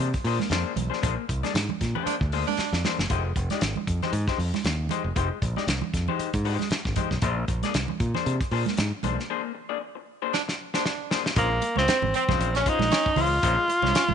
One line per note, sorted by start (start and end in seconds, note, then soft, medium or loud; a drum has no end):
0.00 0.12 C3 medium
0.14 muted clean electric guitar stroke soft
0.14 kick loud
0.14 closed hi-hat soft
0.24 0.37 A#2 medium
0.24 0.47 A#3 medium
0.24 0.40 D4 medium
0.24 0.39 G#4 medium
0.24 0.40 C5 loud
0.24 open hi-hat medium
0.40 muted clean electric guitar stroke soft
0.40 snare soft
0.40 high conga medium
0.50 0.63 F2 medium
0.50 0.72 A#3 medium
0.50 0.72 D4 medium
0.50 0.73 G#4 medium
0.50 0.73 C5 medium
0.50 snare loud
0.50 closed hi-hat medium
0.50 muted conga soft
0.76 0.89 B1 loud
0.76 closed hi-hat medium
0.76 high conga medium
0.76 low conga medium
0.90 1.01 A#3 soft
0.90 1.01 D4 medium
0.90 1.01 G#4 medium
0.90 1.01 C5 medium
0.90 snare soft
1.02 1.16 A#1 loud
1.02 1.23 A#3 medium
1.02 1.17 D4 medium
1.02 1.16 G#4 loud
1.02 1.16 C5 medium
1.02 kick loud
1.02 closed hi-hat loud
1.02 muted conga soft
1.17 muted clean electric guitar stroke soft
1.29 1.41 C2 medium
1.29 muted clean electric guitar stroke soft
1.29 kick loud
1.29 closed hi-hat medium
1.43 1.54 A#3 medium
1.43 1.54 D4 medium
1.43 1.54 G#4 medium
1.43 1.55 D5 medium
1.43 snare soft
1.43 closed hi-hat medium
1.43 high conga medium
1.54 1.67 G#2 medium
1.54 muted clean electric guitar stroke soft
1.54 snare loud
1.54 closed hi-hat loud
1.54 muted conga soft
1.69 muted clean electric guitar stroke soft
1.69 high conga medium
1.69 low conga medium
1.81 1.93 A#2 medium
1.81 kick medium
1.81 snare soft
1.81 closed hi-hat medium
1.81 muted conga soft
1.95 2.16 A#3 medium
1.95 2.15 D4 medium
1.95 2.15 G#4 medium
1.95 2.15 C5 medium
1.95 low conga medium
2.06 2.16 D4 loud
2.06 muted fingered electric bass stroke soft
2.06 closed hi-hat medium
2.06 muted conga soft
2.21 2.43 D2 medium
2.21 muted clean electric guitar stroke soft
2.21 kick loud
2.32 2.54 A#3 medium
2.32 2.47 D4 medium
2.32 2.47 G#4 medium
2.32 2.47 C5 medium
2.32 open hi-hat medium
2.32 muted conga soft
2.47 2.82 D4 loud
2.47 muted clean electric guitar stroke soft
2.47 high conga loud
2.58 muted fingered electric bass stroke medium
2.58 muted clean electric guitar stroke soft
2.58 snare medium
2.72 2.82 F2 medium
2.72 snare medium
2.84 3.02 A#3 medium
2.84 2.99 D4 medium
2.84 3.00 G#4 medium
2.84 2.99 C5 medium
2.84 snare medium
2.84 high conga medium
2.84 low conga medium
2.98 3.08 F#1 medium
2.98 muted clean electric guitar stroke soft
2.98 snare medium
3.10 3.32 F1 loud
3.10 3.31 G#3 medium
3.10 3.25 D#4 medium
3.10 3.24 G4 medium
3.10 3.24 C5 medium
3.10 kick loud
3.10 closed hi-hat loud
3.25 muted clean electric guitar stroke soft
3.36 3.48 F1 loud
3.36 muted clean electric guitar stroke soft
3.36 kick medium
3.36 closed hi-hat medium
3.36 muted conga soft
3.50 3.62 G#3 medium
3.50 3.62 D#4 medium
3.50 3.62 G4 medium
3.50 3.63 D5 medium
3.50 snare soft
3.50 closed hi-hat medium
3.50 high conga medium
3.61 3.74 G#1 loud
3.61 muted clean electric guitar stroke soft
3.61 snare loud
3.61 closed hi-hat loud
3.61 muted conga soft
3.76 muted clean electric guitar stroke soft
3.76 high conga medium
3.76 low conga medium
3.87 4.00 F2 loud
3.87 kick medium
3.87 closed hi-hat medium
3.87 muted conga soft
4.02 4.13 G#3 medium
4.02 4.13 D#4 medium
4.02 4.13 G4 medium
4.02 4.13 C5 medium
4.02 snare soft
4.02 low conga medium
4.13 4.25 G#2 loud
4.13 closed hi-hat medium
4.28 4.39 G#3 medium
4.28 4.39 D#4 medium
4.28 4.39 G4 medium
4.28 4.40 C5 medium
4.28 kick loud
4.28 snare soft
4.38 4.51 F2 loud
4.38 muted clean electric guitar stroke soft
4.38 open hi-hat medium
4.38 muted conga soft
4.54 muted clean electric guitar stroke soft
4.54 snare soft
4.54 high conga loud
4.64 4.87 D#2 medium
4.64 muted clean electric guitar stroke soft
4.64 snare loud
4.64 closed hi-hat medium
4.89 5.08 G#3 medium
4.89 5.05 D#4 medium
4.89 5.04 G4 medium
4.89 5.04 C5 medium
4.89 closed hi-hat medium
4.89 high conga medium
4.89 low conga medium
5.04 5.14 F1 medium
5.04 muted clean electric guitar stroke medium
5.16 5.29 F1 loud
5.16 5.37 G#3 medium
5.16 5.31 D#4 medium
5.16 5.30 G4 medium
5.16 5.30 C5 loud
5.16 kick loud
5.16 closed hi-hat medium
5.16 muted conga soft
5.31 muted clean electric guitar stroke soft
5.42 5.54 A#1 loud
5.42 muted clean electric guitar stroke soft
5.42 kick loud
5.42 closed hi-hat medium
5.42 muted conga soft
5.56 5.67 G#3 medium
5.56 5.67 D#4 medium
5.56 5.67 G4 medium
5.56 5.68 D5 medium
5.56 snare soft
5.56 high conga medium
5.67 5.80 C2 loud
5.67 muted clean electric guitar stroke medium
5.67 snare loud
5.67 closed hi-hat loud
5.81 muted clean electric guitar stroke soft
5.81 high conga medium
5.81 low conga medium
5.93 6.06 F2 loud
5.93 kick medium
5.93 snare soft
5.93 closed hi-hat medium
5.93 muted conga soft
6.08 6.29 G#3 medium
6.08 6.29 D#4 medium
6.08 6.29 G4 medium
6.08 6.28 C5 medium
6.08 low conga medium
6.19 muted fingered electric bass stroke medium
6.19 closed hi-hat medium
6.34 6.56 G#2 loud
6.34 kick loud
6.34 closed hi-hat medium
6.45 6.66 G#3 medium
6.45 6.59 D#4 medium
6.45 6.59 G4 loud
6.45 6.58 C5 medium
6.45 open hi-hat medium
6.59 muted clean electric guitar stroke soft
6.59 snare soft
6.59 high conga medium
6.70 muted fingered electric bass stroke medium
6.70 muted clean electric guitar stroke soft
6.70 snare loud
6.70 closed hi-hat medium
6.70 muted conga soft
6.85 6.95 G#1 loud
6.85 kick loud
6.85 snare soft
6.96 7.14 G#3 medium
6.96 7.11 D#4 medium
6.96 7.10 G4 medium
6.96 7.10 C5 medium
6.96 kick loud
6.96 closed hi-hat medium
6.96 high conga medium
6.96 low conga medium
7.11 7.21 B1 medium
7.11 muted clean electric guitar stroke soft
7.11 kick medium
7.11 snare soft
7.22 7.45 A#1 loud
7.22 7.44 A#3 medium
7.22 7.38 D4 medium
7.22 7.37 G#4 medium
7.22 7.37 C5 medium
7.22 kick loud
7.22 closed hi-hat medium
7.22 muted conga soft
7.38 muted clean electric guitar stroke soft
7.48 7.61 A#1 medium
7.48 muted clean electric guitar stroke soft
7.48 kick loud
7.48 closed hi-hat medium
7.48 muted conga soft
7.63 7.75 A#3 medium
7.63 7.74 D4 medium
7.63 7.74 G#4 medium
7.63 7.76 D5 medium
7.63 snare soft
7.63 closed hi-hat medium
7.63 high conga medium
7.74 7.87 C2 medium
7.74 muted clean electric guitar stroke medium
7.74 snare loud
7.74 closed hi-hat loud
7.88 muted clean electric guitar stroke soft
7.88 high conga medium
7.88 low conga medium
8.00 8.13 A#2 loud
8.00 kick medium
8.00 closed hi-hat medium
8.00 muted conga soft
8.14 8.35 A#3 medium
8.14 8.35 D4 medium
8.14 8.35 G#4 medium
8.14 8.35 C5 medium
8.14 snare soft
8.14 low conga medium
8.26 8.39 C3 loud
8.26 closed hi-hat medium
8.41 muted clean electric guitar stroke medium
8.41 kick loud
8.41 closed hi-hat medium
8.51 8.64 A#2 loud
8.51 8.73 A#3 medium
8.51 8.65 D4 medium
8.51 8.65 G#4 medium
8.51 8.64 C5 medium
8.51 open hi-hat medium
8.65 muted clean electric guitar stroke soft
8.65 snare soft
8.65 high conga loud
8.77 8.91 G#2 loud
8.77 muted clean electric guitar stroke soft
8.77 snare loud
8.77 closed hi-hat medium
8.77 muted conga soft
9.03 9.16 B1 medium
9.03 9.21 A#3 medium
9.03 9.18 D4 medium
9.03 9.18 G#4 medium
9.03 9.17 C5 medium
9.03 closed hi-hat medium
9.03 muted conga soft
9.03 high conga medium
9.03 low conga medium
9.19 muted clean electric guitar stroke soft
9.19 snare soft
9.30 9.51 A#3 medium
9.30 9.44 D4 loud
9.30 9.43 G#4 loud
9.30 9.43 C5 medium
9.44 muted clean electric guitar stroke medium
9.55 muted clean electric guitar stroke soft
9.69 9.79 A#3 medium
9.69 9.80 D4 medium
9.69 9.80 G#4 medium
9.69 9.81 D5 medium
9.80 muted clean electric guitar stroke soft
9.95 muted clean electric guitar stroke soft
10.22 10.33 A#3 medium
10.22 10.34 D4 medium
10.22 10.34 G#4 medium
10.22 10.34 C5 medium
10.33 10.43 D4 loud
10.33 muted clean electric guitar stroke soft
10.33 snare medium
10.48 muted clean electric guitar stroke soft
10.48 snare medium
10.74 10.84 A#3 medium
10.74 11.09 D4 loud
10.74 10.84 D4 medium
10.74 10.84 G#4 medium
10.74 10.85 C5 medium
10.74 snare medium
10.86 snare medium
11.11 11.28 A#3 medium
11.11 11.25 D4 medium
11.11 11.25 G#4 medium
11.11 11.24 C5 medium
11.11 snare loud
11.25 muted clean electric guitar stroke soft
11.25 snare medium
11.36 11.59 A#1 loud
11.36 11.57 G#3 medium
11.36 11.75 A#3 medium
11.36 11.51 C#4 medium
11.36 11.51 F4 medium
11.36 11.50 C5 medium
11.36 kick loud
11.36 closed hi-hat medium
11.36 muted conga soft
11.51 muted clean electric guitar stroke medium
11.62 muted clean electric guitar stroke soft
11.62 closed hi-hat medium
11.62 muted conga soft
11.76 11.86 C#2 medium
11.76 11.87 G#3 medium
11.76 12.12 C4 loud
11.76 11.87 C#4 medium
11.76 11.87 F4 medium
11.76 11.88 C#5 medium
11.76 snare soft
11.76 high conga medium
11.88 11.98 C4 medium
11.88 muted clean electric guitar stroke soft
11.88 snare loud
11.88 closed hi-hat loud
11.88 muted conga soft
12.02 12.12 G#1 medium
12.02 muted clean electric guitar stroke soft
12.02 high conga medium
12.02 low conga medium
12.14 12.24 C4 loud
12.14 12.52 C4 medium
12.14 closed hi-hat medium
12.28 12.38 C2 medium
12.28 12.49 G#3 medium
12.28 12.49 C#4 medium
12.28 12.49 F4 medium
12.28 12.48 C5 medium
12.28 kick loud
12.28 snare soft
12.28 low conga medium
12.39 12.62 A#1 loud
12.39 closed hi-hat medium
12.55 12.62 C#4 medium
12.55 12.70 C#4 medium
12.55 muted clean electric guitar stroke soft
12.55 snare soft
12.55 closed hi-hat medium
12.66 12.87 G#3 medium
12.66 12.81 C#4 medium
12.66 13.23 D#4 loud
12.66 12.81 F4 medium
12.66 12.80 C5 medium
12.66 kick loud
12.66 closed hi-hat medium
12.66 muted conga soft
12.79 12.89 A#1 medium
12.79 muted clean electric guitar stroke soft
12.79 snare soft
12.79 high conga loud
12.91 13.26 C#4 loud
12.91 muted clean electric guitar stroke soft
12.91 snare loud
12.91 closed hi-hat medium
12.91 muted conga soft
13.06 kick loud
13.16 13.39 C#2 loud
13.16 13.34 G#3 medium
13.16 13.30 C#4 medium
13.16 13.30 F4 medium
13.16 13.30 C5 medium
13.16 open hi-hat medium
13.16 muted conga soft
13.16 high conga medium
13.16 low conga medium
13.21 14.14 F4 loud
13.31 muted clean electric guitar stroke medium
13.43 13.55 A#1 loud
13.43 13.64 G#3 medium
13.43 13.57 C#4 medium
13.43 13.57 F4 loud
13.43 13.57 C5 medium
13.43 kick loud
13.43 closed hi-hat loud
13.58 muted clean electric guitar stroke medium
13.68 muted clean electric guitar stroke soft
13.68 closed hi-hat medium
13.68 muted conga soft
13.82 13.93 C2 medium
13.82 13.93 G#3 medium
13.82 13.94 C#4 medium
13.82 13.94 F4 medium
13.82 13.95 C#5 medium
13.82 snare soft
13.82 high conga medium
13.95 14.04 C#4 medium
13.95 muted clean electric guitar stroke soft
13.95 snare loud
13.95 closed hi-hat loud
13.95 muted conga soft
14.08 14.14 G#1 medium
14.08 muted clean electric guitar stroke medium
14.08 high conga medium
14.08 low conga medium